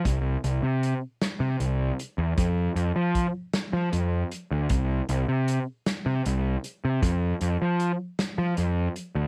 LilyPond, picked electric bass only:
\new Staff \with { instrumentName = "Picked electric bass" } { \clef bass \time 6/8 \key f \mixolydian \tempo 4. = 52 c,8 c,16 c8 r8 c16 c,8 r16 e,16 | f,8 f,16 f8 r8 f16 f,8 r16 d,16 | c,8 c,16 c8 r8 c16 c,8 r16 c16 | f,8 f,16 f8 r8 f16 f,8 r16 d,16 | }